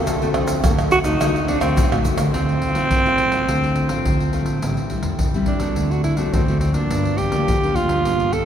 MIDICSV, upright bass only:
0, 0, Header, 1, 2, 480
1, 0, Start_track
1, 0, Key_signature, -1, "minor"
1, 0, Tempo, 570342
1, 57, Time_signature, 4, 2, 24, 8
1, 7112, End_track
2, 0, Start_track
2, 0, Title_t, "Upright bass"
2, 0, Program_c, 0, 32
2, 52, Note_on_c, 0, 38, 107
2, 461, Note_off_c, 0, 38, 0
2, 537, Note_on_c, 0, 38, 76
2, 739, Note_off_c, 0, 38, 0
2, 876, Note_on_c, 0, 38, 89
2, 985, Note_off_c, 0, 38, 0
2, 1014, Note_on_c, 0, 38, 84
2, 1319, Note_off_c, 0, 38, 0
2, 1349, Note_on_c, 0, 38, 101
2, 1461, Note_off_c, 0, 38, 0
2, 1488, Note_on_c, 0, 33, 101
2, 1592, Note_off_c, 0, 33, 0
2, 1612, Note_on_c, 0, 45, 86
2, 1717, Note_off_c, 0, 45, 0
2, 1722, Note_on_c, 0, 42, 85
2, 1827, Note_off_c, 0, 42, 0
2, 1832, Note_on_c, 0, 38, 90
2, 1949, Note_off_c, 0, 38, 0
2, 1972, Note_on_c, 0, 38, 84
2, 2278, Note_off_c, 0, 38, 0
2, 2317, Note_on_c, 0, 33, 88
2, 2426, Note_off_c, 0, 33, 0
2, 2448, Note_on_c, 0, 33, 69
2, 2858, Note_off_c, 0, 33, 0
2, 2935, Note_on_c, 0, 38, 84
2, 3240, Note_off_c, 0, 38, 0
2, 3277, Note_on_c, 0, 33, 77
2, 3386, Note_off_c, 0, 33, 0
2, 3414, Note_on_c, 0, 38, 86
2, 3720, Note_off_c, 0, 38, 0
2, 3760, Note_on_c, 0, 34, 73
2, 3867, Note_off_c, 0, 34, 0
2, 3896, Note_on_c, 0, 33, 99
2, 4201, Note_off_c, 0, 33, 0
2, 4241, Note_on_c, 0, 40, 86
2, 4349, Note_off_c, 0, 40, 0
2, 4376, Note_on_c, 0, 40, 71
2, 4784, Note_off_c, 0, 40, 0
2, 4857, Note_on_c, 0, 38, 79
2, 5162, Note_off_c, 0, 38, 0
2, 5201, Note_on_c, 0, 33, 69
2, 5309, Note_off_c, 0, 33, 0
2, 5343, Note_on_c, 0, 38, 91
2, 5646, Note_off_c, 0, 38, 0
2, 5685, Note_on_c, 0, 33, 78
2, 5792, Note_off_c, 0, 33, 0
2, 5815, Note_on_c, 0, 31, 83
2, 6123, Note_off_c, 0, 31, 0
2, 6163, Note_on_c, 0, 38, 85
2, 6272, Note_off_c, 0, 38, 0
2, 6299, Note_on_c, 0, 38, 74
2, 6707, Note_off_c, 0, 38, 0
2, 6785, Note_on_c, 0, 31, 78
2, 7089, Note_off_c, 0, 31, 0
2, 7112, End_track
0, 0, End_of_file